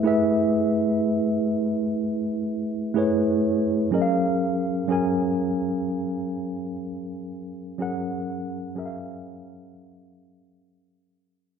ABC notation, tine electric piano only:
X:1
M:4/4
L:1/8
Q:"Swing 16ths" 1/4=62
K:F#
V:1 name="Tine electric piano"
[=A,=EGB=e]3 z3 [A,EGBc]2 | [F,CGAde]2 [F,CGAg]3 z3 | [F,CGAf]2 [F,CGA=e^e]3 z3 |]